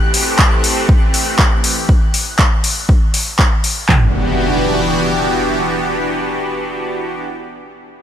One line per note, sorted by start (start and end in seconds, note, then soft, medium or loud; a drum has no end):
0.00 1.85 E3 medium
0.00 1.87 A3 medium
0.00 1.87 C4 medium
0.00 1.85 G4 medium
0.00 1.90 F#6 medium
0.14 open hi-hat loud
0.39 kick loud
0.39 clap loud
0.64 open hi-hat medium
0.89 kick loud
1.14 open hi-hat medium
1.39 kick loud
1.39 clap loud
1.64 open hi-hat medium
1.89 kick loud
2.14 open hi-hat loud
2.39 kick loud
2.39 clap loud
2.64 open hi-hat medium
2.89 kick loud
3.14 open hi-hat medium
3.39 kick loud
3.39 clap loud
3.64 open hi-hat medium
3.89 7.24 E3 medium
3.89 7.24 B3 medium
3.89 7.24 D4 medium
3.89 7.24 F#4 medium
3.89 7.24 G4 medium
3.89 kick medium
3.89 clap medium
3.89 floor tom medium
3.89 impact medium